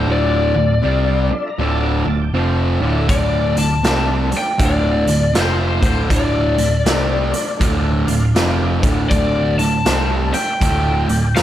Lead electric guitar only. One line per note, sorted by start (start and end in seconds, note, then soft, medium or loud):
0.00 0.11 C5 medium
0.11 1.56 D5 medium
3.11 3.59 D5 medium
3.58 4.35 A5 loud
4.37 4.63 G5 medium
4.65 5.34 D5 medium
5.40 5.85 C5 medium
5.86 6.13 C5 medium
6.13 7.58 D5 medium
9.10 9.55 D5 medium
9.59 10.34 A5 loud
10.34 11.40 G5 medium
11.36 11.43 F5 medium